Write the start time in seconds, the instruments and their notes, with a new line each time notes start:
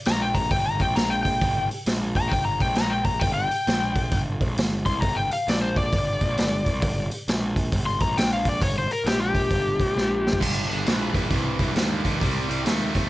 0.05 picked electric bass A#1, electric slide guitar A#5, snare, open hi-hat
0.22 electric slide guitar G5
0.35 electric slide guitar A#5, kick, open hi-hat
0.51 picked electric bass G1, electric slide guitar G5, kick, open hi-hat
0.66 electric slide guitar A#5
0.80 picked electric bass A#1, electric slide guitar G5, kick, open hi-hat
0.96 picked electric bass A#1, electric slide guitar A#5, snare, open hi-hat
1.10 electric slide guitar G5
1.23 electric slide guitar G5, kick, open hi-hat
1.42 picked electric bass G1, kick, open hi-hat
1.71 muted picked electric bass stroke, open hi-hat
1.86 picked electric bass A#1, snare, open hi-hat
2.15 electric slide guitar A#5, kick, open hi-hat
2.28 picked electric bass G1, electric slide guitar G5, kick
2.32 open hi-hat
2.45 electric slide guitar A#5
2.60 picked electric bass A#1, electric slide guitar G5, kick, open hi-hat
2.75 picked electric bass A#1, electric slide guitar A#5, snare, open hi-hat
2.90 electric slide guitar G5
3.04 electric slide guitar A#5, kick, open hi-hat
3.20 picked electric bass G1, electric slide guitar G5, kick, open hi-hat
3.34 electric slide guitar G5
3.51 muted picked electric bass stroke, open hi-hat
3.67 picked electric bass A#1, snare, open hi-hat
3.96 kick, open hi-hat
4.11 picked electric bass G1, kick, open hi-hat
4.41 picked electric bass A#1, kick, open hi-hat
4.57 picked electric bass G1, snare, open hi-hat
4.86 picked electric bass C2, electric slide guitar C6, kick, open hi-hat
5.01 picked electric bass G1, electric slide guitar A#5, kick, open hi-hat
5.16 electric slide guitar G5
5.31 electric slide guitar F5, muted picked electric bass stroke, open hi-hat
5.48 picked electric bass A#1, electric slide guitar D5, snare, open hi-hat
5.62 electric slide guitar C5
5.76 electric slide guitar D5, kick, open hi-hat
5.93 picked electric bass G1, kick, open hi-hat
6.21 picked electric bass A#1, kick, open hi-hat
6.37 picked electric bass G1, snare, open hi-hat
6.66 picked electric bass C2, kick, open hi-hat
6.82 picked electric bass G1, kick, open hi-hat
7.11 muted picked electric bass stroke, open hi-hat
7.28 picked electric bass A#1, snare, open hi-hat
7.56 kick, open hi-hat
7.72 picked electric bass G1, kick, open hi-hat
7.86 electric slide guitar C6
8.00 picked electric bass A#1, electric slide guitar A#5, kick, open hi-hat
8.17 picked electric bass A#1, electric slide guitar G5, snare, open hi-hat
8.33 electric slide guitar F5
8.45 electric slide guitar D5, kick, open hi-hat
8.62 picked electric bass G1, electric slide guitar C#5, kick, open hi-hat
8.78 electric slide guitar C5
8.90 electric slide guitar A#4, muted picked electric bass stroke, open hi-hat
9.05 picked electric bass A#1, electric slide guitar G4, snare, open hi-hat
9.21 electric slide guitar G4
9.35 kick, open hi-hat
9.51 picked electric bass G1, kick, open hi-hat
9.80 picked electric bass A#1, kick, open hi-hat
9.97 picked electric bass A#1, snare
10.27 snare
10.33 kick
10.40 picked electric bass G1, distorted electric guitar G2 D3, kick, crash
10.67 picked electric bass G1, distorted electric guitar G2 D3, open hi-hat
10.85 picked electric bass A#1, distorted electric guitar G2 E3, snare, open hi-hat
11.13 picked electric bass A#1, distorted electric guitar G2 E3, kick, open hi-hat
11.30 picked electric bass C2, distorted electric guitar G2 E3, kick, open hi-hat
11.58 picked electric bass C2, distorted electric guitar G2 E3, kick, open hi-hat
11.75 picked electric bass D#2, distorted electric guitar G2 D3, snare, open hi-hat
12.04 picked electric bass D#2, distorted electric guitar G2 D3, kick, open hi-hat
12.20 picked electric bass C2, distorted electric guitar C3 G3, kick, open hi-hat
12.48 picked electric bass C2, distorted electric guitar C3 G3, open hi-hat
12.64 picked electric bass D#2, distorted electric guitar C3 A3, snare, open hi-hat
12.92 picked electric bass D#2, distorted electric guitar C3 A3, kick, open hi-hat